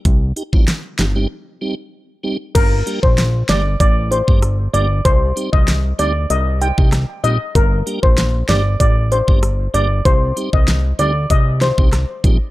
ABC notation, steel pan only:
X:1
M:4/4
L:1/16
Q:1/4=96
K:Gm
V:1 name="Steel pan"
z16 | B2 z c2 z d2 d z c z3 d z | c2 z e2 z d2 e z g z3 e z | B2 z c2 z d2 d z c z3 d z |
c2 z e2 z d2 e z c z4 z |]